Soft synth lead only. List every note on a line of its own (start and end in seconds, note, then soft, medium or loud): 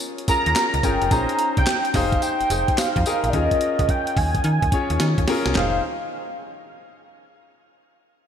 0.29 0.86 A#5 loud
0.84 1.13 G5 loud
1.12 1.57 A#5 loud
1.58 1.96 G5 loud
1.95 2.22 F5 medium
2.22 2.80 G5 loud
2.78 3.31 F5 loud
3.30 3.35 D5 medium
3.34 3.91 D#5 loud
3.90 4.19 G5 loud
4.17 5.28 G#5 loud
5.56 5.82 F5 loud